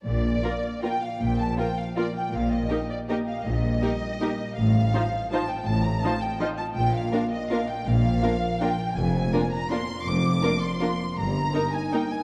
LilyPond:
<<
  \new Staff \with { instrumentName = "Violin section" } { \time 3/4 \key bes \major \tempo 4 = 161 d''2 g''8 f''8 | g''8 a''8 g''8 f''8 d''8 g''8 | f''8 ees''4 d''8 ees''8 f''8 | ees''2. |
f''2 a''8 g''8 | a''8 bes''8 a''8 g''8 ees''8 a''8 | g''8 f''4 ees''8 f''8 g''8 | f''2 g''4 |
\key bes \mixolydian aes''4. bes''8 c'''4 | d'''4. c'''4. | bes''4. aes''8 g''8 aes''8 | }
  \new Staff \with { instrumentName = "Violin section" } { \time 3/4 \key bes \major r4 <f' bes'>4 <f' bes'>4 | r4 <f' bes'>4 <f' bes'>4 | r4 <g' bes'>4 <g' bes'>4 | r4 <g' bes'>4 <g' bes'>4 |
r4 <f' c''>4 <f' c''>4 | r4 <f' c''>4 <f' c''>4 | r4 <f' bes'>4 <f' bes'>4 | r4 <f' bes'>4 <f' bes'>4 |
\key bes \mixolydian r4 <f' bes'>4 <f' bes'>4 | r4 <f' bes'>4 <f' bes'>4 | r4 <ees' bes'>4 <ees' bes'>4 | }
  \new Staff \with { instrumentName = "Harp" } { \time 3/4 \key bes \major bes,8 bes8 f'8 f''8 f'8 bes8 | bes,8 f8 f'8 f''8 f'8 bes8 | bes,8 bes8 g'8 ees''8 g'8 bes8 | bes,8 g8 g'8 ees''8 g'8 bes8 |
a,8 c'8 f'8 ees''8 f'8 c'8 | a,8 a8 f'8 ees''8 f'8 c'8 | bes,8 bes8 f'8 d''8 f'8 bes8 | bes,8 f8 f'8 d''8 f'8 bes8 |
\key bes \mixolydian f,8 bes8 f'8 d''8 f'8 bes8 | f,8 f4 d''8 f'8 bes8 | g,8 bes8 ees'8 ees''8 ees'8 bes8 | }
  \new Staff \with { instrumentName = "Viola section" } { \time 3/4 \key bes \major r4 <bes f'>4 <bes f'>4 | r4 <bes f'>4 <bes f'>4 | r4 <bes ees'>4 <bes ees'>4 | r4 <bes ees'>4 <bes ees'>4 |
r4 <f ees'>4 <f ees'>4 | r4 <f ees'>4 <f ees'>4 | r4 <bes d'>4 <bes d'>4 | r4 <bes d'>4 <bes d'>4 |
\key bes \mixolydian r4 <bes d'>4 <bes d'>4 | r4 <bes d'>4 <bes d'>4 | r4 <bes ees'>4 <bes ees'>4 | }
  \new Staff \with { instrumentName = "Cello section" } { \clef bass \time 3/4 \key bes \major bes,4 r2 | bes,4 r2 | bes,4 r2 | bes,4 r2 |
a,4 r2 | a,4 r2 | bes,4 r2 | bes,4 r2 |
\key bes \mixolydian f,4 r2 | f,4 r2 | g,4 r2 | }
  \new Staff \with { instrumentName = "Double bass section" } { \clef bass \time 3/4 \key bes \major bes,,4 r2 | bes,,4 r2 | bes,,4 r2 | bes,,4 r2 |
a,,4 r2 | a,,4 r2 | bes,,4 r2 | bes,,4 r2 |
\key bes \mixolydian f,,4 r2 | f,,4 r2 | g,,4 r2 | }
>>